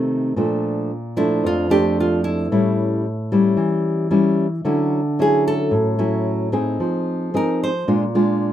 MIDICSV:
0, 0, Header, 1, 3, 480
1, 0, Start_track
1, 0, Tempo, 537153
1, 318, Time_signature, 4, 2, 24, 8
1, 7621, End_track
2, 0, Start_track
2, 0, Title_t, "Nylon-string guitar"
2, 0, Program_c, 0, 24
2, 1046, Note_on_c, 0, 64, 68
2, 1276, Note_off_c, 0, 64, 0
2, 1309, Note_on_c, 0, 65, 76
2, 1527, Note_off_c, 0, 65, 0
2, 1529, Note_on_c, 0, 67, 93
2, 1757, Note_off_c, 0, 67, 0
2, 1791, Note_on_c, 0, 65, 72
2, 1999, Note_off_c, 0, 65, 0
2, 2002, Note_on_c, 0, 64, 78
2, 2685, Note_off_c, 0, 64, 0
2, 4661, Note_on_c, 0, 68, 64
2, 4882, Note_off_c, 0, 68, 0
2, 4893, Note_on_c, 0, 69, 82
2, 5118, Note_off_c, 0, 69, 0
2, 6582, Note_on_c, 0, 70, 71
2, 6802, Note_off_c, 0, 70, 0
2, 6823, Note_on_c, 0, 72, 74
2, 7042, Note_off_c, 0, 72, 0
2, 7621, End_track
3, 0, Start_track
3, 0, Title_t, "Nylon-string guitar"
3, 0, Program_c, 1, 24
3, 0, Note_on_c, 1, 48, 58
3, 0, Note_on_c, 1, 51, 49
3, 0, Note_on_c, 1, 57, 45
3, 0, Note_on_c, 1, 60, 51
3, 298, Note_off_c, 1, 48, 0
3, 300, Note_off_c, 1, 51, 0
3, 304, Note_off_c, 1, 57, 0
3, 306, Note_off_c, 1, 60, 0
3, 325, Note_on_c, 1, 46, 61
3, 330, Note_on_c, 1, 53, 49
3, 334, Note_on_c, 1, 57, 49
3, 337, Note_on_c, 1, 62, 53
3, 801, Note_off_c, 1, 53, 0
3, 802, Note_off_c, 1, 57, 0
3, 805, Note_off_c, 1, 62, 0
3, 1041, Note_on_c, 1, 53, 57
3, 1047, Note_on_c, 1, 57, 57
3, 1051, Note_on_c, 1, 62, 63
3, 1259, Note_off_c, 1, 46, 0
3, 1285, Note_on_c, 1, 41, 65
3, 1482, Note_off_c, 1, 53, 0
3, 1485, Note_off_c, 1, 57, 0
3, 1486, Note_off_c, 1, 62, 0
3, 1519, Note_on_c, 1, 53, 66
3, 1525, Note_on_c, 1, 57, 61
3, 1532, Note_on_c, 1, 62, 66
3, 2200, Note_off_c, 1, 53, 0
3, 2203, Note_off_c, 1, 57, 0
3, 2207, Note_off_c, 1, 62, 0
3, 2218, Note_off_c, 1, 41, 0
3, 2249, Note_on_c, 1, 45, 63
3, 2252, Note_on_c, 1, 55, 48
3, 2254, Note_on_c, 1, 64, 64
3, 2255, Note_on_c, 1, 61, 51
3, 2721, Note_off_c, 1, 55, 0
3, 2723, Note_off_c, 1, 64, 0
3, 2724, Note_off_c, 1, 61, 0
3, 2965, Note_on_c, 1, 55, 60
3, 2967, Note_on_c, 1, 61, 54
3, 2973, Note_on_c, 1, 64, 62
3, 3180, Note_off_c, 1, 45, 0
3, 3189, Note_on_c, 1, 52, 67
3, 3644, Note_off_c, 1, 55, 0
3, 3644, Note_off_c, 1, 61, 0
3, 3646, Note_off_c, 1, 64, 0
3, 3669, Note_on_c, 1, 55, 54
3, 3672, Note_on_c, 1, 61, 57
3, 3680, Note_on_c, 1, 64, 56
3, 3983, Note_off_c, 1, 55, 0
3, 3983, Note_off_c, 1, 61, 0
3, 3988, Note_off_c, 1, 64, 0
3, 4130, Note_off_c, 1, 52, 0
3, 4151, Note_on_c, 1, 50, 67
3, 4156, Note_on_c, 1, 54, 52
3, 4158, Note_on_c, 1, 61, 55
3, 4164, Note_on_c, 1, 64, 58
3, 4466, Note_off_c, 1, 54, 0
3, 4466, Note_off_c, 1, 61, 0
3, 4470, Note_off_c, 1, 64, 0
3, 4638, Note_on_c, 1, 54, 53
3, 4643, Note_on_c, 1, 61, 58
3, 4646, Note_on_c, 1, 64, 62
3, 5090, Note_off_c, 1, 50, 0
3, 5102, Note_on_c, 1, 45, 67
3, 5319, Note_off_c, 1, 54, 0
3, 5321, Note_off_c, 1, 61, 0
3, 5323, Note_off_c, 1, 64, 0
3, 5348, Note_on_c, 1, 54, 60
3, 5352, Note_on_c, 1, 61, 59
3, 5357, Note_on_c, 1, 64, 70
3, 5794, Note_off_c, 1, 54, 0
3, 5795, Note_off_c, 1, 61, 0
3, 5798, Note_off_c, 1, 64, 0
3, 5828, Note_on_c, 1, 60, 61
3, 5834, Note_on_c, 1, 63, 62
3, 5837, Note_on_c, 1, 68, 63
3, 6045, Note_off_c, 1, 45, 0
3, 6076, Note_on_c, 1, 53, 71
3, 6514, Note_off_c, 1, 60, 0
3, 6515, Note_off_c, 1, 63, 0
3, 6518, Note_off_c, 1, 68, 0
3, 6558, Note_on_c, 1, 60, 58
3, 6563, Note_on_c, 1, 63, 59
3, 6563, Note_on_c, 1, 68, 59
3, 6880, Note_off_c, 1, 60, 0
3, 6881, Note_off_c, 1, 63, 0
3, 6882, Note_off_c, 1, 68, 0
3, 7012, Note_off_c, 1, 53, 0
3, 7039, Note_on_c, 1, 46, 69
3, 7041, Note_on_c, 1, 56, 55
3, 7042, Note_on_c, 1, 62, 50
3, 7046, Note_on_c, 1, 65, 57
3, 7178, Note_off_c, 1, 56, 0
3, 7180, Note_off_c, 1, 62, 0
3, 7181, Note_off_c, 1, 65, 0
3, 7282, Note_on_c, 1, 56, 58
3, 7284, Note_on_c, 1, 62, 63
3, 7287, Note_on_c, 1, 65, 69
3, 7621, Note_off_c, 1, 46, 0
3, 7621, Note_off_c, 1, 56, 0
3, 7621, Note_off_c, 1, 62, 0
3, 7621, Note_off_c, 1, 65, 0
3, 7621, End_track
0, 0, End_of_file